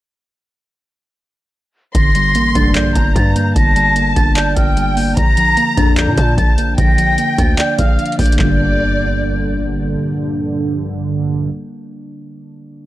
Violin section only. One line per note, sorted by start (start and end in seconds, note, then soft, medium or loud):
1.95 2.92 C6 loud
2.95 3.52 A#5 medium
3.56 4.53 A5 loud
4.56 5.13 G5 medium
5.17 6.14 A#5 loud
6.17 6.74 A5 medium
6.78 7.75 G5 loud
7.79 8.17 F5 medium
8.19 8.38 D5 medium
8.39 9.56 D5 medium